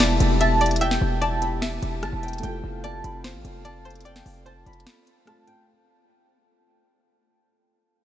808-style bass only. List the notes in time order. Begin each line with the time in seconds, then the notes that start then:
Already playing: E1
0.20 E1
1.01 E1
1.83 E1
2.03 G1
2.13 E1
2.43 F1
2.64 F1
3.04 F1
3.35 A1
3.45 F1
4.26 F1
4.66 F1